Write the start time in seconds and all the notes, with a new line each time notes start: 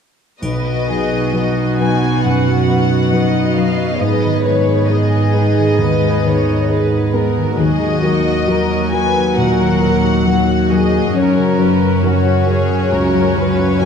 0.42 B1 B2 B3 F#4 B4 D#5, triangle
0.66 B3
0.88 F#3 D#4 G#4 B4
1.12 D#4
1.34 F#3 D#4 F#4 B4 D#5
1.58 D#4
1.79 F#3 D#4 B4 G#5
2.03 B3
2.22 F#2 B2 F#5
2.47 F#3
2.69 B3 D#4 B4
2.91 D#4
3.12 F#3 D#4 F#4 B4 D#5
3.35 D#4
3.56 F#3 D#4 B4 F5
3.80 B3
4.00 G#2 B3 G#4 B4 D#5
4.25 D#3
4.43 D#4 B4 C#5
4.47 G#3
4.69 D#4
4.88 G#3 D#4 G#4 B4 D#5
5.13 D#4
5.34 G#3 D#4 B4
5.58 D#3
5.79 D#2 G#2 B4
6.03 G#3
6.23 D#3 D#4 B4 C#5
6.48 D#4
6.69 G#3 D#4 B4
6.93 D#4
7.13 G#3 B3 D#4 A#4
7.37 D#3
7.57 D#2 D#3 F#3 F#4 G#4 D#5
7.81 D#4
8.03 F#3 F#4 A#4
8.26 F#4
8.48 F#3 F#4 A#4 A#5
8.71 F#4
8.93 F#3 F#4 A#4 B4 G#5
9.16 D#4
9.37 A#2 D#3 A#4 F#5
9.60 F#3
9.81 D#4 F#4 A#4
10.04 F#4
10.25 F#3 F#4 A#4
10.50 F#4
10.70 F#3 F#4 G#4 A#4 D#5
10.94 D#4
11.14 F#2 C#4 F#4 A#4 C#5
11.38 C#3
11.58 F#3 F#4 B4 C#5
11.81 F#4
12.03 F#3 F#4 A#4 C#5
12.26 F#4
12.46 F#3 F#4 G#4 A#4
12.70 C#3
12.92 C#2 F#2 A#4
13.14 F#3
13.36 C#3 F#4 B4 C#5
13.60 F#4
13.81 F#3 F#4 G#5